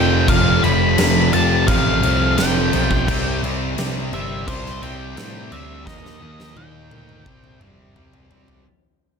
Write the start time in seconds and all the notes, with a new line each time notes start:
Already playing: F1 F2 C3 F3 C4 G4 A4 G5
0.28 F1 F2 C3 F3 F5, kick, crash
0.63 F1 F2 C3 F3 B5, crash
0.98 F1 F2 C3 F3, snare, crash
1.32 F1 F2 C3 F3 A5, crash
1.67 A1 F2 C3 F3 F5, kick, crash
2.02 C2 F2 C3 F3, crash
2.37 F1 F2 C3 F3 G5, snare, crash
2.73 B1 F2 C3 F3, crash
2.91 kick
3.08 C2 C3 G3 C4 E5, kick, crash
3.43 C2 C3 G3 C4, crash
3.77 C2 C3 G3 C4, snare, crash
4.13 G1 C3 G3 C4 E5, crash
4.47 C2 C3 G3 C4 C5, kick, crash
4.66 snare
4.82 C2 C3 G3 C4 G5, crash
5.17 A2 C3 G3 C4, snare, crash
5.51 D2 C3 G3 C4 E5, crash
5.86 D#2 D#3 A#3 D#4 D#5, kick, snare
6.06 snare
6.20 D#2 D#3 A#3 D#4
6.40 snare
6.56 D#2 D#3 A#3 D#4 G5, high tom
6.91 D2 D#3 A#3 D#4, high tom
7.09 mid tom
7.25 C2 C3 G3 C4 E5, kick
7.44 mid tom
7.60 G1 C3 G3 C4, mid tom
7.95 C2 C3 G3 C4, mid tom
8.13 floor tom
8.29 C2 C3 G3 C4, floor tom
8.48 floor tom